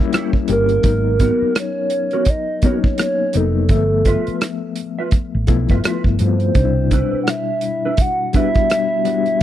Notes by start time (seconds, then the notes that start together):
Already playing: G3 A#3 C#4 E4
0.13 E4 G4 C#5, cross-stick, closed hi-hat
0.33 kick
0.48 G1 G3 A#3 C#4 G4 A#4, closed hi-hat
0.69 closed hi-hat
0.83 G#1 F#3 B3 D#4 A#4, kick, closed hi-hat
1.19 B3 F#4 A#4, kick, closed hi-hat
1.42 muted fretless electric bass stroke
1.55 C#5, cross-stick, closed hi-hat
1.90 closed hi-hat
2.11 B3 F#4 A#4, closed hi-hat
2.25 kick, closed hi-hat
2.30 D#5
2.62 F#3 A#3 B3 D#4 F#4 A#4 C#5, kick, closed hi-hat
2.84 kick
2.98 C#5, cross-stick, closed hi-hat
3.33 F1 F#3 A#3 B3 D#4 A4, closed hi-hat
3.69 G1 F3 A3 A#3 E5, kick, closed hi-hat
3.77 B3
4.05 F4 B4 E5, kick, closed hi-hat
4.27 muted fretless electric bass stroke, closed hi-hat
4.41 cross-stick, closed hi-hat
4.76 closed hi-hat
4.99 F4 B4 E5
5.11 kick, closed hi-hat
5.35 A1
5.47 B1 F3 A3 B3 E4, kick, closed hi-hat
5.69 G1 F4 B4 E5, kick, closed hi-hat
5.84 F4 B4 E5, cross-stick, closed hi-hat
6.04 G1, kick
6.19 G2 F3 A3 B3 F4 C5, closed hi-hat
6.40 closed hi-hat
6.55 C2 B2 G3 D4 D#4, kick, closed hi-hat
6.63 E4
6.91 D4 E4 B4, kick, closed hi-hat
7.13 muted fretless electric bass stroke
7.24 F#5, closed hi-hat
7.28 E5, cross-stick
7.61 closed hi-hat
7.85 D4 E4 B4
7.97 kick, closed hi-hat
8.01 F#5
8.33 G3 B3 D4 E4 F#4 B4 E5, kick, closed hi-hat
8.55 kick, closed hi-hat
8.70 cross-stick, closed hi-hat
9.05 G3 B3 D4 F#4, closed hi-hat
9.26 closed hi-hat